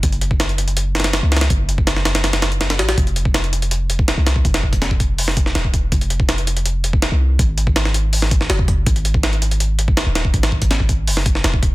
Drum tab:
HH |x-x-x---x-x-x-x-x---xxx-x---xxx-|x---x---x---x-x-x-x-x-x-x-x-x-x-|x-x-x---x-x-x-x-x---x---x---x---|x-x---x-x---x---o---x---x---x---|
SD |--------o-----------ooo-o---ooo-|--------o-o-o-o-o-o-o---o-o-o-o-|--------o---------------o---o---|--o-----o---------o---o-o-------|
BD |o-----o-------------------------|o-----o-------------------------|o-----o---------------o-------o-|o---o-o---o-o-------o-----o-o---|

HH |x-x-x---x-x-x-x-x---x---x-------|x---x---x---x---o---x---x---x---|x-x-x---x-x-x-x-x---x---x---x---|x-x---x-x---x---o---x---x---x---|
SD |--------o---------------o-------|--------o-o-------o---o-o-------|--------o---------------o---o---|--o-----o---------o---o-o-------|
BD |o-----o---------------o---------|o-----o-------------o-----o-o---|o-----o---------------o-------o-|o---o-o---o-o-------o-----o-o---|